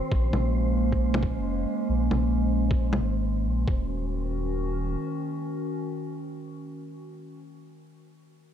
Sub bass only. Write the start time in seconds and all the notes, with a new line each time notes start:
0.12 A#1
0.33 A#1
1.37 F1
1.89 A#1
2.11 A#1
3.00 G#1
3.45 A#1
3.67 D#1